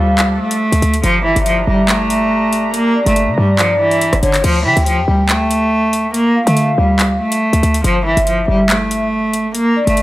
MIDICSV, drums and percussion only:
0, 0, Header, 1, 2, 480
1, 0, Start_track
1, 0, Key_signature, -1, "minor"
1, 0, Tempo, 425532
1, 1169, Time_signature, 4, 2, 24, 8
1, 11308, End_track
2, 0, Start_track
2, 0, Title_t, "Drums"
2, 208, Note_on_c, 9, 39, 120
2, 209, Note_on_c, 9, 42, 81
2, 321, Note_off_c, 9, 39, 0
2, 322, Note_off_c, 9, 42, 0
2, 575, Note_on_c, 9, 42, 94
2, 688, Note_off_c, 9, 42, 0
2, 818, Note_on_c, 9, 42, 92
2, 929, Note_off_c, 9, 42, 0
2, 929, Note_on_c, 9, 42, 79
2, 1042, Note_off_c, 9, 42, 0
2, 1055, Note_on_c, 9, 42, 85
2, 1168, Note_off_c, 9, 42, 0
2, 1168, Note_on_c, 9, 42, 75
2, 1281, Note_off_c, 9, 42, 0
2, 1537, Note_on_c, 9, 42, 69
2, 1646, Note_off_c, 9, 42, 0
2, 1646, Note_on_c, 9, 42, 85
2, 1759, Note_off_c, 9, 42, 0
2, 2129, Note_on_c, 9, 39, 122
2, 2129, Note_on_c, 9, 42, 82
2, 2241, Note_off_c, 9, 39, 0
2, 2242, Note_off_c, 9, 42, 0
2, 2371, Note_on_c, 9, 42, 83
2, 2483, Note_off_c, 9, 42, 0
2, 2849, Note_on_c, 9, 42, 80
2, 2962, Note_off_c, 9, 42, 0
2, 3088, Note_on_c, 9, 42, 75
2, 3201, Note_off_c, 9, 42, 0
2, 3457, Note_on_c, 9, 42, 67
2, 3566, Note_off_c, 9, 42, 0
2, 3566, Note_on_c, 9, 42, 82
2, 3679, Note_off_c, 9, 42, 0
2, 4049, Note_on_c, 9, 39, 124
2, 4049, Note_on_c, 9, 42, 79
2, 4161, Note_off_c, 9, 39, 0
2, 4162, Note_off_c, 9, 42, 0
2, 4415, Note_on_c, 9, 42, 57
2, 4528, Note_off_c, 9, 42, 0
2, 4528, Note_on_c, 9, 42, 96
2, 4641, Note_off_c, 9, 42, 0
2, 4655, Note_on_c, 9, 37, 96
2, 4657, Note_on_c, 9, 42, 90
2, 4768, Note_off_c, 9, 37, 0
2, 4769, Note_off_c, 9, 42, 0
2, 4769, Note_on_c, 9, 42, 80
2, 4881, Note_off_c, 9, 42, 0
2, 4895, Note_on_c, 9, 39, 70
2, 4895, Note_on_c, 9, 42, 87
2, 5007, Note_off_c, 9, 42, 0
2, 5007, Note_on_c, 9, 42, 76
2, 5008, Note_off_c, 9, 39, 0
2, 5008, Note_on_c, 9, 49, 106
2, 5120, Note_off_c, 9, 42, 0
2, 5121, Note_off_c, 9, 49, 0
2, 5377, Note_on_c, 9, 42, 69
2, 5486, Note_off_c, 9, 42, 0
2, 5486, Note_on_c, 9, 42, 83
2, 5599, Note_off_c, 9, 42, 0
2, 5969, Note_on_c, 9, 39, 122
2, 5969, Note_on_c, 9, 42, 80
2, 6081, Note_off_c, 9, 39, 0
2, 6082, Note_off_c, 9, 42, 0
2, 6211, Note_on_c, 9, 42, 84
2, 6324, Note_off_c, 9, 42, 0
2, 6690, Note_on_c, 9, 42, 79
2, 6803, Note_off_c, 9, 42, 0
2, 6928, Note_on_c, 9, 42, 73
2, 7041, Note_off_c, 9, 42, 0
2, 7297, Note_on_c, 9, 42, 66
2, 7407, Note_off_c, 9, 42, 0
2, 7407, Note_on_c, 9, 42, 82
2, 7519, Note_off_c, 9, 42, 0
2, 7889, Note_on_c, 9, 39, 120
2, 7890, Note_on_c, 9, 42, 81
2, 8002, Note_off_c, 9, 39, 0
2, 8002, Note_off_c, 9, 42, 0
2, 8254, Note_on_c, 9, 42, 94
2, 8367, Note_off_c, 9, 42, 0
2, 8497, Note_on_c, 9, 42, 86
2, 8609, Note_off_c, 9, 42, 0
2, 8609, Note_on_c, 9, 42, 77
2, 8722, Note_off_c, 9, 42, 0
2, 8735, Note_on_c, 9, 42, 84
2, 8848, Note_off_c, 9, 42, 0
2, 8848, Note_on_c, 9, 42, 79
2, 8960, Note_off_c, 9, 42, 0
2, 9217, Note_on_c, 9, 42, 71
2, 9327, Note_off_c, 9, 42, 0
2, 9327, Note_on_c, 9, 42, 82
2, 9439, Note_off_c, 9, 42, 0
2, 9809, Note_on_c, 9, 39, 126
2, 9809, Note_on_c, 9, 42, 82
2, 9921, Note_off_c, 9, 39, 0
2, 9922, Note_off_c, 9, 42, 0
2, 10050, Note_on_c, 9, 42, 81
2, 10163, Note_off_c, 9, 42, 0
2, 10529, Note_on_c, 9, 42, 80
2, 10642, Note_off_c, 9, 42, 0
2, 10767, Note_on_c, 9, 42, 75
2, 10880, Note_off_c, 9, 42, 0
2, 11136, Note_on_c, 9, 42, 70
2, 11246, Note_off_c, 9, 42, 0
2, 11246, Note_on_c, 9, 42, 81
2, 11308, Note_off_c, 9, 42, 0
2, 11308, End_track
0, 0, End_of_file